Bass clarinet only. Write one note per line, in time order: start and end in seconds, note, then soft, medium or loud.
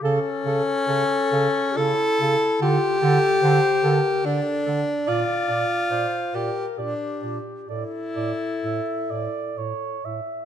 0.03 0.19 C#3 medium
0.45 0.61 C#3 medium
0.88 1.04 C#3 medium
1.32 1.48 C#3 medium
1.78 1.94 C#3 medium
2.21 2.37 C#3 medium
2.61 2.77 D3 medium
3.03 3.19 D3 medium
3.43 3.59 D3 medium
3.84 4.00 D3 medium
4.25 4.41 D3 medium
4.67 4.83 D3 medium
5.08 5.24 A#2 medium
5.49 5.65 A#2 medium
5.91 6.07 A#2 medium
6.34 6.50 A#2 soft
6.78 6.94 A#2 soft
7.23 7.39 A#2 soft
7.69 7.85 A2 medium
8.17 8.33 A2 medium
8.64 8.80 A2 soft
9.11 9.27 A2 soft
9.57 9.73 A2 soft
10.05 10.21 A2 soft